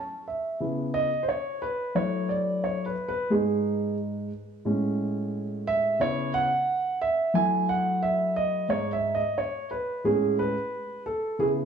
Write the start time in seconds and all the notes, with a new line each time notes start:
Already playing: C#4 A5
0.28 E5
0.60 C#3 B3 E4
0.94 D#5
1.23 C5
1.29 C#5
1.62 B4
1.95 F#3 A3 E4 C#5
2.29 D5
2.64 C#5
2.86 B4
3.08 B4
3.30 G#2 G#3 D#4 G#4
4.65 A2 G#3 C#4
5.67 E5
5.99 C#3 B3 E4 C#5
6.34 F#5
7.01 E5
7.34 F#3 A3 E4 G#5
7.69 F#5
8.03 E5
8.36 D#5
8.69 G#2 G#3 D#4 C#5
8.93 E5
9.15 D#5
9.38 C#5
9.71 B4
10.04 A2 G#3 C#4 G#4
10.39 B4
11.06 A4
11.39 C#3 B3 E4 G#4